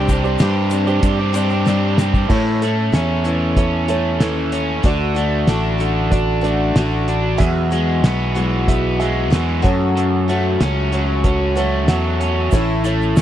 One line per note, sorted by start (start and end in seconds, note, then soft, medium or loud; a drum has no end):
0.00 0.36 C2 loud
0.00 0.39 C3 loud
0.00 0.13 D4 medium
0.00 0.10 G4 loud
0.00 0.14 G4 medium
0.00 0.14 C5 medium
0.09 0.40 G3 medium
0.09 0.26 C4 medium
0.09 0.39 C4 soft
0.09 0.25 D4 medium
0.09 0.40 D4 soft
0.09 0.40 G4 medium
0.09 0.23 G4 medium
0.09 kick medium
0.09 ride medium
0.09 shaker medium
0.23 0.40 C4 medium
0.23 0.73 D4 medium
0.23 0.41 D4 medium
0.23 0.74 G4 medium
0.23 0.42 G4 medium
0.23 0.74 C5 medium
0.23 shaker soft
0.38 0.99 G2 loud
0.38 1.19 C3 medium
0.38 0.71 G3 medium
0.38 1.19 G3 loud
0.38 0.72 C4 medium
0.38 0.89 C4 loud
0.38 0.71 D4 medium
0.38 0.87 D4 loud
0.38 0.70 G4 medium
0.38 snare loud
0.38 ride medium
0.38 shaker medium
0.43 0.85 G4 loud
0.70 1.34 C4 soft
0.70 1.34 D4 medium
0.70 1.32 G4 medium
0.70 ride medium
0.70 shaker medium
0.87 1.20 C4 medium
0.87 1.87 D4 medium
0.87 1.19 D4 medium
0.87 1.18 G4 medium
0.87 1.87 G4 medium
0.87 1.87 C5 medium
0.87 shaker soft
1.03 2.26 G2 loud
1.03 kick medium
1.03 ride loud
1.03 shaker medium
1.19 1.35 C4 medium
1.19 1.36 D4 medium
1.19 1.37 G4 medium
1.33 1.66 G3 medium
1.33 1.64 C4 soft
1.33 1.53 C4 medium
1.33 1.66 D4 medium
1.33 1.52 D4 medium
1.33 1.65 G4 medium
1.33 ride medium
1.33 shaker loud
1.38 1.50 G4 medium
1.50 1.68 D4 medium
1.50 1.68 G4 medium
1.50 shaker soft
1.55 1.67 C4 medium
1.66 2.28 C3 medium
1.66 2.29 G3 medium
1.66 1.97 G3 medium
1.66 2.29 C4 medium
1.66 1.98 C4 medium
1.66 2.30 D4 medium
1.66 2.00 D4 loud
1.66 2.31 G4 medium
1.66 2.00 G4 loud
1.66 snare medium
1.66 shaker medium
1.98 2.28 G3 medium
1.98 2.15 C4 medium
1.98 2.14 D4 medium
1.98 2.12 G4 medium
1.98 snare medium
1.98 shaker medium
2.13 2.29 C4 medium
2.13 2.28 D4 medium
2.13 2.27 G4 medium
2.13 kick medium
2.13 shaker soft
2.29 2.61 A2 medium
2.29 2.89 A2 loud
2.29 3.89 A2 medium
2.29 2.61 E3 medium
2.29 2.62 A3 medium
2.29 2.62 C#4 medium
2.29 3.29 E4 medium
2.29 3.30 A4 medium
2.29 2.61 A4 medium
2.29 3.30 C#5 medium
2.29 kick loud
2.29 crash medium
2.62 3.88 A3 medium
2.62 2.93 A3 soft
2.62 2.93 C#4 soft
2.62 2.93 A4 medium
2.62 closed hi-hat medium
2.92 4.19 E2 medium
2.92 3.24 E3 medium
2.92 3.25 A3 medium
2.92 3.25 C#4 medium
2.92 3.57 C#4 medium
2.92 3.23 A4 medium
2.92 snare loud
2.92 closed hi-hat medium
3.24 4.19 E3 medium
3.24 3.90 A3 soft
3.24 3.88 C#4 soft
3.24 3.87 A4 medium
3.24 closed hi-hat medium
3.56 4.52 C#4 medium
3.56 3.82 E4 medium
3.56 3.82 A4 medium
3.56 3.82 C#5 medium
3.56 kick medium
3.56 closed hi-hat medium
3.88 4.84 A3 medium
3.88 4.20 A3 medium
3.88 4.20 C#4 soft
3.88 4.64 E4 medium
3.88 4.20 A4 medium
3.88 4.64 A4 medium
3.88 4.65 C#5 medium
3.88 closed hi-hat medium
4.19 4.79 D#2 medium
4.19 4.84 E3 medium
4.19 4.83 A3 medium
4.19 4.85 C#4 medium
4.19 4.85 A4 medium
4.19 snare loud
4.19 closed hi-hat medium
4.52 4.84 C#4 medium
4.52 closed hi-hat medium
4.83 5.44 D2 medium
4.83 5.15 D3 medium
4.83 5.79 D3 medium
4.83 5.16 A3 medium
4.83 5.15 D4 medium
4.83 5.85 F#4 medium
4.83 5.13 F#4 medium
4.83 5.85 A4 medium
4.83 5.85 D5 medium
4.83 kick loud
4.83 closed hi-hat medium
5.15 6.43 A3 medium
5.15 5.47 A3 soft
5.15 5.48 D4 medium
5.15 5.47 F#4 soft
5.15 closed hi-hat medium
5.47 6.71 A1 medium
5.47 5.79 D3 medium
5.47 5.80 A3 medium
5.47 6.11 D4 medium
5.47 5.79 D4 medium
5.47 5.77 F#4 medium
5.47 snare loud
5.47 closed hi-hat medium
5.78 6.75 D3 medium
5.78 6.43 A3 soft
5.78 6.42 D4 medium
5.78 6.41 F#4 soft
5.78 closed hi-hat medium
6.10 7.08 D4 medium
6.10 6.36 F#4 medium
6.10 6.36 A4 medium
6.10 6.37 D5 medium
6.10 kick medium
6.10 closed hi-hat medium
6.41 6.75 A3 soft
6.41 7.40 A3 medium
6.41 6.75 D4 soft
6.41 6.74 F#4 medium
6.41 7.19 F#4 medium
6.41 7.19 A4 medium
6.41 7.20 D5 medium
6.41 closed hi-hat medium
6.75 7.35 A1 medium
6.75 7.38 D3 medium
6.75 7.40 D3 medium
6.75 7.38 A3 medium
6.75 7.38 D4 medium
6.75 7.38 F#4 medium
6.75 snare loud
6.75 closed hi-hat medium
7.08 7.40 D4 medium
7.08 closed hi-hat medium
7.37 7.71 E2 medium
7.37 9.00 E2 medium
7.37 8.00 E2 medium
7.37 7.71 B2 medium
7.37 7.71 F#3 medium
7.37 7.71 G#3 medium
7.37 7.70 B3 medium
7.37 8.40 F#4 medium
7.37 7.70 F#4 medium
7.37 8.40 G#4 medium
7.37 8.40 E5 medium
7.37 kick loud
7.37 closed hi-hat medium
7.71 8.03 F#3 soft
7.71 8.04 G#3 soft
7.71 9.00 G#3 medium
7.71 8.04 B3 soft
7.71 8.03 F#4 soft
7.71 closed hi-hat medium
8.03 9.32 B1 medium
8.03 8.36 F#3 medium
8.03 8.36 G#3 medium
8.03 8.68 B3 medium
8.03 8.35 B3 medium
8.03 8.34 F#4 medium
8.03 snare loud
8.03 closed hi-hat loud
8.35 9.32 E3 medium
8.35 9.01 F#3 soft
8.35 9.00 G#3 medium
8.35 9.00 B3 medium
8.35 8.99 F#4 medium
8.35 closed hi-hat medium
8.67 9.65 B3 medium
8.67 8.93 F#4 medium
8.67 8.93 G#4 medium
8.67 8.93 E5 medium
8.67 kick medium
8.67 closed hi-hat loud
8.99 9.29 F#3 soft
8.99 9.65 G#3 medium
8.99 9.30 G#3 soft
8.99 9.31 B3 medium
8.99 9.62 F#4 medium
8.99 9.32 F#4 medium
8.99 9.64 G#4 medium
8.99 9.64 E5 medium
8.99 closed hi-hat medium
9.30 9.62 E2 medium
9.30 9.65 E3 medium
9.30 9.62 F#3 medium
9.30 9.62 G#3 medium
9.30 9.62 B3 medium
9.30 9.61 F#4 medium
9.30 snare loud
9.30 closed hi-hat medium
9.62 10.28 F#2 medium
9.62 10.56 F#2 medium
9.62 9.95 F#2 medium
9.62 10.28 C#3 medium
9.62 10.28 F#3 medium
9.62 10.29 A3 medium
9.62 10.29 C#4 medium
9.62 10.27 F#4 medium
9.62 10.66 F#4 medium
9.62 10.67 A4 medium
9.62 10.67 C#5 medium
9.62 kick loud
9.62 closed hi-hat medium
9.96 11.57 F#2 medium
9.96 closed hi-hat medium
10.28 10.59 F#3 soft
10.28 11.57 A3 medium
10.28 10.61 A3 soft
10.28 10.61 C#4 medium
10.28 10.60 F#4 medium
10.28 closed hi-hat medium
10.61 11.88 C#2 medium
10.61 10.93 F#3 medium
10.61 10.93 A3 medium
10.61 11.24 C#4 medium
10.61 10.92 C#4 medium
10.61 10.91 F#4 medium
10.61 snare loud
10.61 closed hi-hat medium
10.92 11.88 F#3 medium
10.92 11.57 F#3 soft
10.92 11.57 A3 medium
10.92 11.55 C#4 soft
10.92 11.54 F#4 medium
10.92 closed hi-hat medium
11.24 12.19 C#4 medium
11.24 11.50 F#4 medium
11.24 11.50 A4 medium
11.24 11.50 C#5 medium
11.24 kick medium
11.24 closed hi-hat medium
11.56 11.87 F#3 soft
11.56 11.88 A3 medium
11.56 12.84 A3 medium
11.56 11.89 C#4 medium
11.56 11.88 F#4 medium
11.56 12.33 F#4 medium
11.56 12.33 A4 medium
11.56 12.34 C#5 medium
11.56 closed hi-hat medium
11.88 12.49 E2 medium
11.88 12.53 F#3 medium
11.88 12.54 A3 medium
11.88 12.53 C#4 medium
11.88 12.54 F#4 medium
11.88 12.18 F#5 medium
11.88 snare loud
11.88 closed hi-hat medium
12.20 12.53 C#4 medium
12.20 12.51 A5 medium
12.20 closed hi-hat medium
12.51 13.13 A1 medium
12.51 13.22 A2 medium
12.51 12.85 A2 medium
12.51 12.86 E3 medium
12.51 12.85 A3 medium
12.51 12.84 C#4 medium
12.51 13.22 E4 medium
12.51 13.22 A4 medium
12.51 13.22 C#5 medium
12.51 kick loud
12.51 closed hi-hat medium
12.51 shaker medium
12.56 12.83 E4 medium
12.84 13.22 A3 medium
12.84 13.17 A3 soft
12.84 13.17 C#4 medium
12.84 13.17 E4 medium
12.84 closed hi-hat medium
12.84 shaker medium
13.01 shaker soft
13.16 13.22 E2 medium
13.16 13.22 E3 medium
13.16 13.22 A3 medium
13.16 13.22 C#4 medium
13.16 snare loud
13.16 closed hi-hat medium
13.16 shaker medium